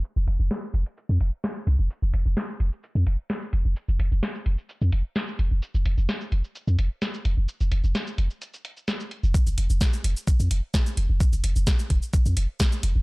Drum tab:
HH |--x---xx--x---x-|--x---x---x---x-|--x---x---x---x-|--x---x---x---x-|
SH |xx-xxx-xxx--xx--|xx-xxx-xxx--xx--|xx-xxx-xxx--xx--|xx-xxx-xxx--xx--|
SD |----o-------o---|----o-------o---|----o-------o---|----o-------o---|
BD |----------------|----------------|----------------|----------------|

HH |--x---x-x-x---x-|--x---x---x---x-|--x---x---x---x-|
SH |xx-xxx-xxx-xxx-x|xx-xxx-xxx--xx--|xx-xxx-xxx--xx--|
SD |----o-------o---|----o-------o---|----o-------o---|
BD |----------------|o---o---o---o---|o---o-o-o---o---|